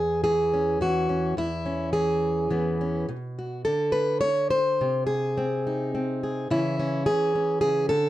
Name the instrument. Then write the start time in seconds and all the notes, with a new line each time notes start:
steel-string acoustic guitar
Already playing: E2 G#4
0.24 E3 G#4
0.53 C#4
0.81 E3 F#4
1.09 C#4
1.37 E2 E4
1.66 C#4
1.93 E3 G#4
2.50 E3 B3
2.81 C#4
3.09 B2
3.39 F#4
3.65 D3 A4
3.92 B4
4.21 D3 C#5
4.50 C5
4.81 C3
5.07 G#4
5.38 C4
5.67 D#4
5.95 C4
6.23 G#4
6.50 C#3 E3 C#4 E4
6.79 C#4
7.06 E3 G#4
7.35 C#4
7.61 C#3 G#4
7.89 D3 A4